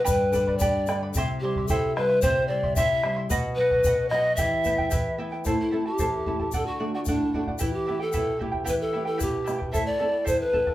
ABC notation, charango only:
X:1
M:2/4
L:1/16
Q:1/4=112
K:Em
V:1 name="Charango"
[GBdgb]2 [Bdgb] [Bdb] [GBdgb]2 [Bdgb] [Bdb] | [EGcec']2 [Ecec'] [Eec'] [EGcec']2 [Ecec'] [Eec'] | [EGcec']2 [Ecec'] [Eec'] [EGcec']2 [Ecec'] [Eec'] | [B^df]2 [Bdf] [df] [Bdf]2 [Bdf] [df] |
[EGBeg]2 [EBeg] [EBg] [EGBeg]2 [EBeg] [EBg] | [EAcea]2 [EAea] [EAa] [EAcea]2 [EAea] [EAa] | [Adf]2 [Adf] [df] [Adf]2 [Adf] [df] | [EGBeg]2 [EBeg] [EBg] [EGBeg]2 [EBeg] [EBg] |
[EGBeg]2 [EBeg] [EBg] [EGBeg]2 [EBeg] [EBg] | [EAcea]2 [EAea] [EAa] [EAcea]2 [EAea] [EAa] |]